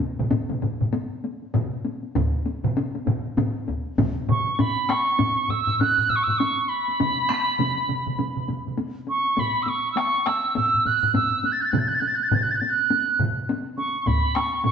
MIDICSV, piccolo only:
0, 0, Header, 1, 2, 480
1, 0, Start_track
1, 0, Tempo, 610998
1, 1696, Time_signature, 4, 2, 24, 8
1, 3129, Tempo, 601805
1, 6009, Tempo, 591716
1, 9369, Tempo, 581959
1, 11828, End_track
2, 0, Start_track
2, 0, Title_t, "Piccolo"
2, 0, Program_c, 0, 72
2, 3383, Note_on_c, 0, 85, 71
2, 3574, Note_off_c, 0, 85, 0
2, 3574, Note_on_c, 0, 85, 57
2, 3621, Note_on_c, 0, 83, 83
2, 3633, Note_off_c, 0, 85, 0
2, 3868, Note_on_c, 0, 85, 82
2, 3880, Note_off_c, 0, 83, 0
2, 4341, Note_on_c, 0, 88, 85
2, 4353, Note_off_c, 0, 85, 0
2, 4579, Note_on_c, 0, 90, 97
2, 4591, Note_off_c, 0, 88, 0
2, 4814, Note_on_c, 0, 88, 82
2, 4826, Note_off_c, 0, 90, 0
2, 4864, Note_on_c, 0, 85, 74
2, 4876, Note_off_c, 0, 88, 0
2, 4927, Note_on_c, 0, 88, 86
2, 4938, Note_off_c, 0, 85, 0
2, 5044, Note_on_c, 0, 85, 81
2, 5056, Note_off_c, 0, 88, 0
2, 5286, Note_on_c, 0, 83, 82
2, 5298, Note_off_c, 0, 85, 0
2, 6732, Note_off_c, 0, 83, 0
2, 7225, Note_on_c, 0, 85, 78
2, 7470, Note_on_c, 0, 83, 83
2, 7482, Note_off_c, 0, 85, 0
2, 7657, Note_on_c, 0, 88, 62
2, 7670, Note_off_c, 0, 83, 0
2, 7705, Note_on_c, 0, 85, 81
2, 7717, Note_off_c, 0, 88, 0
2, 7892, Note_off_c, 0, 85, 0
2, 7897, Note_on_c, 0, 88, 66
2, 7941, Note_on_c, 0, 85, 92
2, 7953, Note_off_c, 0, 88, 0
2, 8178, Note_on_c, 0, 88, 86
2, 8190, Note_off_c, 0, 85, 0
2, 8411, Note_off_c, 0, 88, 0
2, 8416, Note_on_c, 0, 88, 86
2, 8661, Note_on_c, 0, 90, 90
2, 8673, Note_off_c, 0, 88, 0
2, 8889, Note_off_c, 0, 90, 0
2, 8894, Note_on_c, 0, 88, 87
2, 9116, Note_off_c, 0, 88, 0
2, 9132, Note_on_c, 0, 90, 67
2, 9196, Note_on_c, 0, 93, 70
2, 9208, Note_off_c, 0, 90, 0
2, 9267, Note_on_c, 0, 90, 72
2, 9279, Note_off_c, 0, 93, 0
2, 9301, Note_on_c, 0, 93, 73
2, 9313, Note_off_c, 0, 90, 0
2, 9349, Note_on_c, 0, 90, 70
2, 9361, Note_off_c, 0, 93, 0
2, 9413, Note_on_c, 0, 93, 70
2, 9426, Note_off_c, 0, 90, 0
2, 9487, Note_on_c, 0, 90, 70
2, 9500, Note_off_c, 0, 93, 0
2, 9543, Note_on_c, 0, 93, 74
2, 9555, Note_off_c, 0, 90, 0
2, 9589, Note_on_c, 0, 90, 78
2, 9602, Note_off_c, 0, 93, 0
2, 9650, Note_on_c, 0, 93, 73
2, 9663, Note_off_c, 0, 90, 0
2, 9712, Note_on_c, 0, 90, 71
2, 9725, Note_off_c, 0, 93, 0
2, 9779, Note_on_c, 0, 93, 74
2, 9791, Note_off_c, 0, 90, 0
2, 9822, Note_on_c, 0, 90, 78
2, 9835, Note_off_c, 0, 93, 0
2, 9875, Note_on_c, 0, 93, 75
2, 9888, Note_off_c, 0, 90, 0
2, 9939, Note_on_c, 0, 90, 79
2, 9951, Note_off_c, 0, 93, 0
2, 10007, Note_on_c, 0, 93, 65
2, 10019, Note_off_c, 0, 90, 0
2, 10042, Note_on_c, 0, 90, 64
2, 10055, Note_off_c, 0, 93, 0
2, 10086, Note_on_c, 0, 93, 70
2, 10098, Note_off_c, 0, 90, 0
2, 10161, Note_on_c, 0, 90, 89
2, 10174, Note_off_c, 0, 93, 0
2, 10573, Note_off_c, 0, 90, 0
2, 11052, Note_on_c, 0, 85, 72
2, 11249, Note_off_c, 0, 85, 0
2, 11249, Note_on_c, 0, 85, 58
2, 11293, Note_on_c, 0, 83, 76
2, 11306, Note_off_c, 0, 85, 0
2, 11526, Note_on_c, 0, 85, 77
2, 11539, Note_off_c, 0, 83, 0
2, 11769, Note_off_c, 0, 85, 0
2, 11774, Note_on_c, 0, 85, 86
2, 11828, Note_off_c, 0, 85, 0
2, 11828, End_track
0, 0, End_of_file